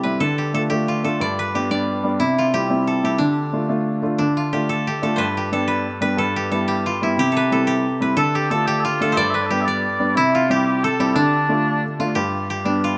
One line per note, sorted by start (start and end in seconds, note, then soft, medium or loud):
0.00 0.18 C3 medium
0.00 0.94 E4 medium
0.00 0.38 G4 medium
0.00 0.20 A4 medium
0.00 1.39 B4 medium
0.04 0.20 G3 soft
0.04 0.20 C4 soft
0.04 0.20 E4 soft
0.20 1.17 D3 medium
0.20 0.54 A4 loud
0.38 0.69 G4 medium
0.54 0.69 A3 soft
0.54 0.69 D4 soft
0.54 0.70 F4 soft
0.54 0.60 A4 medium
0.70 1.02 A3 soft
0.70 1.03 D4 soft
0.70 1.03 F4 soft
0.70 1.55 G4 medium
0.88 2.26 F4 medium
1.04 1.19 A3 soft
1.04 1.19 D4 soft
1.04 1.20 F4 soft
1.04 2.87 A4 medium
1.20 2.17 G2 medium
1.20 1.71 D5 loud
1.39 3.17 B4 medium
1.54 1.69 G3 soft
1.54 1.69 B3 soft
1.54 1.69 D4 soft
1.54 2.53 G4 medium
1.70 2.02 G3 soft
1.70 2.03 B3 soft
1.70 2.03 D4 soft
1.70 3.31 D5 medium
2.04 2.19 G3 soft
2.04 2.19 B3 soft
2.04 2.20 D4 soft
2.20 3.16 C3 medium
2.20 2.44 E4 medium
2.38 4.36 F4 medium
2.54 2.68 G3 soft
2.54 2.69 C4 soft
2.54 2.69 E4 soft
2.54 3.04 G4 medium
2.70 3.02 G3 soft
2.70 3.02 C4 soft
2.70 3.03 E4 soft
2.87 4.69 A4 medium
3.03 3.19 G3 soft
3.03 3.19 C4 soft
3.03 3.19 E4 soft
3.03 4.52 G4 medium
3.18 4.16 D3 medium
3.18 4.18 D4 medium
3.53 3.67 A3 soft
3.53 3.68 D4 soft
3.53 3.68 F4 soft
3.69 4.01 A3 soft
3.69 4.02 D4 soft
3.69 4.02 F4 soft
4.02 4.18 A3 soft
4.02 4.18 D4 soft
4.02 4.19 F4 soft
4.18 5.16 D3 medium
4.18 6.61 D4 medium
4.37 6.56 F4 medium
4.53 4.86 A3 soft
4.53 4.86 D4 soft
4.53 4.86 F4 soft
4.53 4.87 G4 medium
4.69 5.03 A4 medium
4.87 5.37 G4 medium
5.02 5.18 A3 soft
5.02 5.18 D4 soft
5.02 5.18 F4 soft
5.02 5.52 A4 medium
5.16 6.15 G2 medium
5.16 5.67 B4 medium
5.16 5.24 C5 medium
5.37 6.36 G4 medium
5.52 5.85 G3 soft
5.52 5.85 B3 soft
5.52 5.85 D4 soft
5.52 6.18 A4 medium
5.68 6.01 B4 medium
6.01 6.17 G3 soft
6.01 6.17 B3 soft
6.01 6.17 D4 medium
6.01 7.36 B4 medium
6.17 7.14 G2 medium
6.17 6.51 A4 medium
6.36 6.67 G4 medium
6.51 6.84 G3 soft
6.51 6.84 B3 soft
6.51 6.85 E4 soft
6.51 7.31 A4 medium
6.68 7.19 G4 medium
6.86 7.09 F4 medium
7.01 7.17 G3 soft
7.01 7.17 B3 soft
7.01 7.17 E4 soft
7.01 8.91 E4 medium
7.17 8.14 C3 medium
7.17 7.67 G4 loud
7.32 7.52 A4 medium
7.37 8.01 B4 medium
7.51 7.84 G3 soft
7.51 7.84 C4 soft
7.51 7.85 E4 soft
7.51 8.16 A4 medium
7.67 8.35 G4 medium
8.00 8.16 G3 soft
8.00 8.17 C4 soft
8.00 8.17 E4 soft
8.00 9.18 B4 medium
8.17 9.13 D3 medium
8.17 8.51 A4 loud
8.17 8.35 A4 medium
8.35 8.67 G4 medium
8.35 8.50 G4 medium
8.50 8.83 A3 soft
8.50 8.84 D4 soft
8.50 8.84 F4 soft
8.50 8.66 A4 medium
8.50 9.01 A4 medium
8.66 8.80 G4 medium
8.66 9.50 G4 medium
8.80 8.85 A4 medium
8.85 9.13 F4 medium
8.85 10.23 F4 medium
9.01 9.16 A3 soft
9.01 9.16 D4 soft
9.01 9.16 F4 soft
9.01 10.84 A4 medium
9.12 9.40 C5 medium
9.12 9.17 E5 medium
9.17 10.13 G2 medium
9.17 9.30 D5 medium
9.17 9.67 D5 loud
9.30 11.12 B4 medium
9.30 9.35 E5 medium
9.35 9.42 B4 medium
9.42 9.51 A4 soft
9.42 9.46 D5 soft
9.50 9.83 G3 soft
9.50 9.83 B3 soft
9.50 9.84 D4 soft
9.50 10.50 G4 medium
9.50 9.61 G4 medium
9.61 10.16 D5 medium
9.61 9.65 E5 medium
9.68 11.28 D5 medium
10.00 10.15 G3 soft
10.00 10.15 B3 soft
10.00 10.16 D4 soft
10.15 11.12 C3 medium
10.15 10.34 E4 medium
10.15 10.41 E4 loud
10.34 10.51 F4 medium
10.34 11.99 F4 medium
10.50 10.83 G3 soft
10.50 10.83 C4 soft
10.50 10.83 E4 soft
10.50 10.84 G4 medium
10.50 11.00 G4 medium
10.84 12.74 A4 medium
10.84 11.15 A4 medium
11.00 11.15 G3 soft
11.00 11.15 C4 soft
11.00 11.15 E4 soft
11.00 12.15 G4 medium
11.15 12.12 D3 medium
11.15 11.83 D4 medium
11.15 12.65 D4 medium
11.49 11.82 A3 soft
11.49 11.82 D4 soft
11.49 11.82 F4 soft
11.99 12.15 A3 soft
11.99 12.15 D4 soft
11.99 12.84 F4 medium
11.99 12.15 F4 soft
12.15 12.98 G2 medium
12.15 12.50 G4 medium
12.50 12.98 G4 medium
12.65 12.97 G3 soft
12.65 12.98 B3 soft
12.65 12.98 D4 medium
12.65 12.98 D4 soft
12.84 12.98 F4 medium